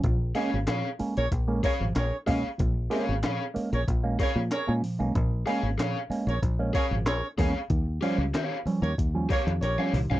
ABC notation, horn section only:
X:1
M:4/4
L:1/16
Q:1/4=94
K:Bbdor
V:1 name="Horn section"
z6 z [ABd] z2 [ABd] z [ABd]2 z2 | z6 z [ABd] z2 [ABd] z [ABd]2 z2 | z6 z [ABd] z2 [ABd] z [ABd]2 z2 | z6 z [GBd] z2 [GBd] z [GBd]2 z2 |]